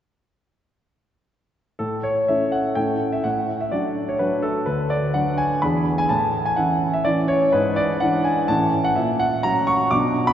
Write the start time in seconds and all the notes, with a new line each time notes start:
1.79 A2 A4
2.03 C#5
2.28 A3 C#4 E4 E5
2.52 F#5
2.75 A2 A3 C#4 E4 G5
3.12 E5
3.24 A2 F#5
3.61 E5
3.72 F#3 D4 F#4 D5
4.09 C#5
4.19 F#3 D4 F#4 B4
4.42 A4
4.66 D2 B4
4.90 D5
5.14 F#3 D4 F#4 F#5
5.38 G#5
5.62 E2 E3 D4 G#4 B5
5.98 G#5
6.09 A2 A5
6.46 G#5
6.56 E3 C#4 E4 F#5
6.94 E5
7.05 E3 C#4 E4 D5
7.28 C#5
7.52 G#2 B4
7.76 D5
8.00 E3 D4 E4 F#5
8.24 G#5
8.48 A2 E3 C#4 E4 A5
8.84 F#5
8.96 A#2 E5
9.19 F#5
9.43 F#3 C#4 A#5
9.67 C#6
9.91 B2 F#3 B3 D4 D6
10.27 B5